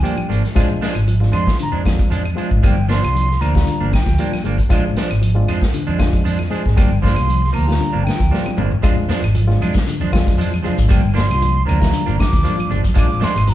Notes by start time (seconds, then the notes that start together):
Already playing: F3
0.02 F3 G3 A#3 D4 G4 G5, closed hi-hat
0.17 F3, muted clean electric guitar stroke, muted fingered electric bass stroke, claves
0.29 G#1 F3 G#3 A#3 D4, closed hi-hat
0.44 muted clean electric guitar stroke, snare, closed hi-hat
0.55 A#1 F3 G#3 C4 D4 F4, kick, snare, closed hi-hat, claves
0.70 muted clean electric guitar stroke
0.81 F3 G#3 D4, muted fingered electric bass stroke, snare, closed hi-hat
0.95 G#1, muted clean electric guitar stroke, closed hi-hat, claves
1.08 F3, closed hi-hat
1.20 G#3 C4 D4 F4, muted clean electric guitar stroke, snare
1.32 F2 F3 G#3 D4 C6, closed hi-hat, claves
1.46 D#3, muted clean electric guitar stroke, kick, snare
1.58 D3, muted clean electric guitar stroke, muted fingered electric bass stroke, closed hi-hat
1.62 A#5
1.72 F2 F3 G#3 D4
1.84 D3 G#3 C4 D4 F4, muted clean electric guitar stroke, kick, snare, closed hi-hat, claves
1.99 F3, kick, closed hi-hat
2.10 F2 F3 G#3 D4, closed hi-hat
2.24 muted clean electric guitar stroke, claves
2.36 F3 G#3 C4 D4 F4, closed hi-hat
2.51 G#1, muted clean electric guitar stroke, kick
2.63 G1 F3 G3 A#3 D4 G5, kick, closed hi-hat, claves
2.77 muted clean electric guitar stroke
2.89 F3 A#3 D4 C6, snare, closed hi-hat
3.02 C2 G3 A#3 D4 F4, muted clean electric guitar stroke, closed hi-hat, claves
3.15 F3, closed hi-hat
3.29 muted clean electric guitar stroke, snare
3.41 D2 F3 A#3 D4 A#5, closed hi-hat, claves
3.54 D#3 G3 A#3 D4 F4, muted clean electric guitar stroke, kick, snare
3.66 D3, muted clean electric guitar stroke, closed hi-hat
3.80 G1 F3 A#3 D4
3.92 D3 G5, muted clean electric guitar stroke, kick, snare, closed hi-hat, claves
4.06 D2 F3, kick, snare, closed hi-hat
4.18 F3 G3 A#3 D4 F4, closed hi-hat
4.32 F3, muted fingered electric bass stroke, muted clean electric guitar stroke, snare, claves
4.44 G1 F3 G#3 A#3 D4, closed hi-hat
4.57 muted clean electric guitar stroke, kick, closed hi-hat
4.69 A#1 F3 G#3 C4 D4 F4, kick, closed hi-hat, claves
4.86 muted clean electric guitar stroke
4.96 F3 D4, muted fingered electric bass stroke, muted clean electric guitar stroke, snare, closed hi-hat
5.10 G#1, muted clean electric guitar stroke, closed hi-hat, claves
5.22 F3, closed hi-hat
5.35 G#3 C4 D4 F4, muted clean electric guitar stroke
5.48 F2 F3 G#3 D4, closed hi-hat, claves
5.61 muted clean electric guitar stroke, kick, snare
5.73 D3, muted clean electric guitar stroke, muted fingered electric bass stroke, closed hi-hat
5.87 F2 F3 G#3 D4
5.99 D3 G#3 C4 D4 F4, muted clean electric guitar stroke, kick, snare, closed hi-hat, claves
6.13 F3, kick, closed hi-hat
6.24 F2 F3 G#3 D4, closed hi-hat
6.39 F3, muted clean electric guitar stroke, snare, claves
6.50 F3 G#3 C4 D4 G#4, closed hi-hat
6.64 G#1, muted clean electric guitar stroke, kick, snare
6.76 G1 F3 G3 A#3 D4 G5, kick, closed hi-hat, claves
6.91 muted clean electric guitar stroke
7.01 F3 A#3 D4 C6, kick, closed hi-hat
7.06 snare
7.16 C2 G3 A#3 D4 F4, muted clean electric guitar stroke, closed hi-hat, claves
7.28 F3, closed hi-hat
7.42 muted clean electric guitar stroke, snare
7.53 D2 F3 A#3 A#5, open hi-hat, claves
7.67 D#3 G3 A#3 D4 F4, muted clean electric guitar stroke, snare
7.80 D3, muted clean electric guitar stroke, closed hi-hat
7.93 G1 F3 A#3 D4
8.04 D3 G5, muted clean electric guitar stroke, closed hi-hat, claves
8.09 snare
8.19 D2 F3, kick, closed hi-hat
8.31 F3 G3 A#3 D4 F4, snare
8.45 F3, muted clean electric guitar stroke, muted fingered electric bass stroke, high tom, claves
8.57 G1 F3 G#3 A#3 D4, mid tom
8.71 muted clean electric guitar stroke, floor tom
8.82 A#1 G#3 C4 D4 F4, muted clean electric guitar stroke, kick, closed hi-hat, claves, shekere
8.97 muted clean electric guitar stroke
9.09 F3 G#3 D4, muted fingered electric bass stroke, snare, closed hi-hat, shekere
9.22 G#1, muted clean electric guitar stroke, closed hi-hat, claves, shekere
9.35 F3, closed hi-hat, high conga, shekere
9.47 G#3 C4 D4 F4, muted clean electric guitar stroke, snare
9.60 F2 G#3 D4, muted clean electric guitar stroke, closed hi-hat, high conga, low conga, claves, shekere
9.74 D#3, muted clean electric guitar stroke, kick, snare, shekere
9.86 D3, muted fingered electric bass stroke, muted clean electric guitar stroke, closed hi-hat, shekere
10.00 F2 F3 G#3 D4, high conga, shekere
10.12 D3 G#3 C4 D4 F4, muted clean electric guitar stroke, kick, snare, closed hi-hat, high conga, claves
10.26 F3, kick, snare, closed hi-hat
10.37 F2 F3 G#3 D4, closed hi-hat, high conga, shekere
10.51 F3, muted clean electric guitar stroke, claves, shekere
10.62 F3 G#3 C4 D4 F4, closed hi-hat, high conga, low conga, shekere
10.77 G#1, muted clean electric guitar stroke, kick, shekere
10.88 F3 G3 A#3 D4 G5, kick, closed hi-hat, claves, shekere
11.02 muted clean electric guitar stroke
11.14 F3 A#3 D4 C6, snare, closed hi-hat, shekere
11.27 C2 G3 A#3 D4 F4, muted clean electric guitar stroke, snare, closed hi-hat, shekere
11.31 claves
11.41 F3, closed hi-hat, high conga, shekere
11.55 muted clean electric guitar stroke
11.65 D2 F3 A#3 D4 A#5, closed hi-hat, high conga, low conga, claves, shekere
11.81 D#3 G3 A#3 D4 F4, muted clean electric guitar stroke, kick, snare, high conga, shekere
11.93 D3, muted clean electric guitar stroke, closed hi-hat, shekere
12.06 G1 F3 A#3 D4, shekere
12.18 D3 D6, muted clean electric guitar stroke, kick, snare, closed hi-hat, high conga, claves
12.32 D2 F3, kick, snare, closed hi-hat
12.43 F3 G3 A#3 D4 F4, closed hi-hat, high conga, shekere
12.57 F3, muted clean electric guitar stroke, muted fingered electric bass stroke, claves, shekere
12.69 G1 F3 G#3 D4, muted clean electric guitar stroke, closed hi-hat, low conga, shekere
12.83 muted clean electric guitar stroke, kick, closed hi-hat, high conga, shekere
12.94 A#1 F3 G#3 C4 D4 F4, muted clean electric guitar stroke, kick, closed hi-hat, shekere
12.99 D6, claves
13.08 muted clean electric guitar stroke
13.20 F3 G#3 D4, muted fingered electric bass stroke, snare, closed hi-hat, shekere
13.24 C6
13.35 G#1, muted clean electric guitar stroke, snare, closed hi-hat, claves, shekere
13.47 F3 A#5, closed hi-hat, high conga, shekere